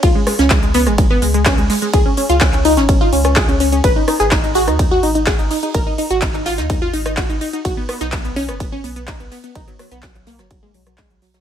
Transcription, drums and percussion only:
0.03 kick, closed hi-hat, ride
0.27 cross-stick, closed hi-hat, open hi-hat
0.39 snare, closed hi-hat
0.50 kick, snare, clap, closed hi-hat, ride
0.62 closed hi-hat
0.74 snare, closed hi-hat, open hi-hat
0.86 cross-stick, closed hi-hat
0.98 kick, closed hi-hat, ride
1.22 closed hi-hat, open hi-hat
1.34 closed hi-hat
1.46 kick, snare, clap, closed hi-hat, ride
1.58 closed hi-hat
1.70 snare, open hi-hat
1.82 closed hi-hat
1.93 kick, closed hi-hat, ride
2.17 closed hi-hat, open hi-hat
2.29 closed hi-hat
2.41 kick, snare, clap, closed hi-hat, ride
2.53 clap, closed hi-hat
2.65 closed hi-hat, open hi-hat
2.77 snare, closed hi-hat
2.89 kick, closed hi-hat, ride
3.13 closed hi-hat, open hi-hat
3.24 cross-stick, closed hi-hat
3.36 kick, snare, clap, closed hi-hat, ride
3.49 closed hi-hat
3.60 closed hi-hat, open hi-hat
3.72 closed hi-hat
3.84 kick, closed hi-hat, ride
4.08 cross-stick, closed hi-hat, open hi-hat
4.20 snare, closed hi-hat
4.31 kick, snare, clap, closed hi-hat, ride
4.44 closed hi-hat
4.54 closed hi-hat, open hi-hat
4.68 cross-stick, closed hi-hat
4.79 kick, closed hi-hat, ride
5.03 closed hi-hat, open hi-hat
5.15 closed hi-hat
5.27 kick, snare, clap, closed hi-hat, ride
5.39 closed hi-hat
5.50 snare, open hi-hat
5.63 closed hi-hat
5.74 kick, closed hi-hat, ride
5.98 closed hi-hat, open hi-hat
6.10 closed hi-hat
6.22 kick, snare, clap, closed hi-hat, ride
6.34 clap, closed hi-hat
6.45 snare, closed hi-hat, open hi-hat
6.58 snare, closed hi-hat
6.70 kick, closed hi-hat, ride
6.93 closed hi-hat, open hi-hat
7.06 cross-stick, closed hi-hat
7.17 kick, snare, clap, closed hi-hat, ride
7.30 closed hi-hat
7.41 closed hi-hat, open hi-hat
7.53 closed hi-hat
7.65 kick, closed hi-hat, ride
7.89 cross-stick, closed hi-hat, open hi-hat
8.01 snare, closed hi-hat
8.12 kick, snare, clap, closed hi-hat, ride
8.24 closed hi-hat
8.36 snare, closed hi-hat, open hi-hat
8.48 cross-stick, closed hi-hat
8.60 kick, closed hi-hat, ride
8.84 closed hi-hat, open hi-hat
8.96 closed hi-hat
9.07 kick, snare, clap, closed hi-hat, ride
9.20 closed hi-hat
9.31 snare, open hi-hat
9.44 closed hi-hat
9.55 kick, closed hi-hat, ride
9.68 closed hi-hat
9.79 cross-stick, closed hi-hat, open hi-hat
9.91 closed hi-hat
10.03 kick, snare, clap, closed hi-hat, ride
10.15 clap, closed hi-hat
10.26 snare, closed hi-hat, open hi-hat
10.38 cross-stick, snare, closed hi-hat
10.51 kick, closed hi-hat, ride
10.74 closed hi-hat, open hi-hat
10.86 cross-stick, closed hi-hat
10.98 kick, snare, clap, closed hi-hat, ride
11.10 closed hi-hat
11.22 snare, open hi-hat
11.34 snare, closed hi-hat

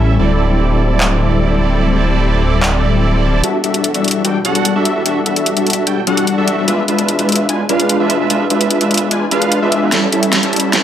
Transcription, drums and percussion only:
1.00 clap
2.63 clap
3.44 closed hi-hat
3.64 closed hi-hat
3.74 closed hi-hat
3.84 closed hi-hat
3.94 closed hi-hat
4.04 closed hi-hat
4.08 closed hi-hat
4.11 closed hi-hat
4.25 closed hi-hat
4.45 closed hi-hat
4.55 closed hi-hat
4.65 closed hi-hat
4.85 closed hi-hat
5.06 closed hi-hat
5.26 closed hi-hat
5.36 closed hi-hat
5.46 closed hi-hat
5.57 closed hi-hat
5.67 closed hi-hat
5.70 closed hi-hat
5.73 closed hi-hat
5.87 closed hi-hat
6.07 closed hi-hat
6.17 closed hi-hat
6.27 closed hi-hat
6.48 closed hi-hat
6.68 closed hi-hat
6.88 closed hi-hat
6.99 closed hi-hat
7.08 closed hi-hat
7.19 closed hi-hat
7.29 closed hi-hat
7.32 closed hi-hat
7.36 closed hi-hat
7.49 closed hi-hat
7.69 closed hi-hat
7.80 closed hi-hat
7.89 closed hi-hat
8.10 closed hi-hat
8.30 closed hi-hat
8.50 closed hi-hat
8.61 closed hi-hat
8.71 closed hi-hat
8.81 closed hi-hat
8.91 closed hi-hat
8.94 closed hi-hat
8.98 closed hi-hat
9.11 closed hi-hat
9.31 closed hi-hat
9.42 closed hi-hat
9.52 closed hi-hat
9.72 closed hi-hat
9.92 snare, closed hi-hat
10.12 closed hi-hat
10.23 closed hi-hat
10.33 snare, closed hi-hat
10.43 closed hi-hat
10.53 closed hi-hat
10.56 closed hi-hat
10.60 closed hi-hat
10.73 snare, closed hi-hat

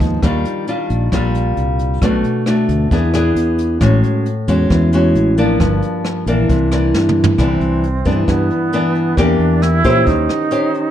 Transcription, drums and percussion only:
0.00 kick, closed hi-hat
0.23 kick, cross-stick, closed hi-hat
0.45 closed hi-hat
0.67 closed hi-hat
0.90 closed hi-hat
1.12 kick, cross-stick, closed hi-hat
1.35 closed hi-hat
1.57 closed hi-hat
1.79 closed hi-hat
2.02 kick, cross-stick, closed hi-hat
2.24 closed hi-hat
2.46 cross-stick, closed hi-hat
2.69 closed hi-hat
2.91 kick, closed hi-hat
3.14 cross-stick, closed hi-hat
3.36 closed hi-hat
3.58 closed hi-hat
3.81 kick, cross-stick, closed hi-hat
4.03 closed hi-hat
4.26 closed hi-hat
4.48 closed hi-hat
4.70 kick, cross-stick, closed hi-hat
4.92 closed hi-hat
5.15 closed hi-hat
5.38 closed hi-hat
5.60 kick, cross-stick, closed hi-hat
5.82 closed hi-hat
6.05 cross-stick, closed hi-hat
6.27 closed hi-hat
6.49 kick, closed hi-hat
6.72 cross-stick, closed hi-hat
6.94 snare
7.09 mid tom
7.24 floor tom
7.38 kick, cross-stick, closed hi-hat
7.61 closed hi-hat
7.84 closed hi-hat
8.06 kick, closed hi-hat
8.28 kick, cross-stick, closed hi-hat
8.50 closed hi-hat
8.73 closed hi-hat
8.95 closed hi-hat
9.17 kick, cross-stick, closed hi-hat
9.40 closed hi-hat
9.62 cross-stick, closed hi-hat
9.85 kick, closed hi-hat
10.07 kick, closed hi-hat
10.29 cross-stick, closed hi-hat
10.52 closed hi-hat
10.74 closed hi-hat

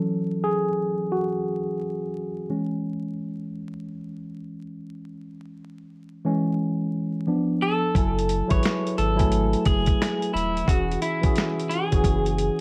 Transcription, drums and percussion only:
7.95 kick, closed hi-hat
8.19 closed hi-hat
8.29 closed hi-hat
8.50 kick, closed hi-hat
8.63 finger snap, snare, closed hi-hat
8.87 closed hi-hat
8.98 closed hi-hat
9.19 kick, closed hi-hat
9.32 closed hi-hat
9.53 closed hi-hat
9.65 kick, closed hi-hat
9.86 kick, closed hi-hat
10.02 finger snap, snare, closed hi-hat
10.22 closed hi-hat
10.37 closed hi-hat
10.57 closed hi-hat
10.68 kick, closed hi-hat
10.92 closed hi-hat
11.02 closed hi-hat
11.23 kick, closed hi-hat
11.36 finger snap, snare, closed hi-hat
11.59 closed hi-hat
11.71 closed hi-hat
11.92 kick, closed hi-hat
12.04 kick, closed hi-hat
12.26 closed hi-hat
12.38 closed hi-hat

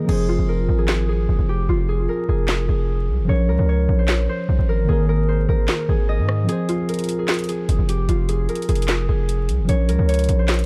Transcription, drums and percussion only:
0.09 crash
0.88 snare, clap
2.48 snare, clap
4.08 snare, clap
5.68 snare, clap
6.29 cross-stick
6.49 closed hi-hat
6.69 closed hi-hat
6.89 closed hi-hat
6.94 closed hi-hat
6.99 closed hi-hat
7.04 closed hi-hat
7.09 closed hi-hat
7.28 snare, clap, closed hi-hat
7.34 closed hi-hat
7.39 closed hi-hat
7.44 closed hi-hat
7.49 closed hi-hat
7.69 closed hi-hat
7.89 closed hi-hat
8.09 closed hi-hat
8.29 closed hi-hat
8.49 closed hi-hat
8.55 closed hi-hat
8.62 closed hi-hat
8.69 closed hi-hat
8.75 closed hi-hat
8.82 closed hi-hat
8.88 snare, clap, closed hi-hat
9.29 closed hi-hat
9.49 closed hi-hat
9.69 closed hi-hat
9.89 closed hi-hat
10.09 closed hi-hat
10.14 closed hi-hat
10.19 closed hi-hat
10.24 closed hi-hat
10.29 closed hi-hat
10.48 snare, clap, closed hi-hat
10.54 closed hi-hat
10.59 closed hi-hat

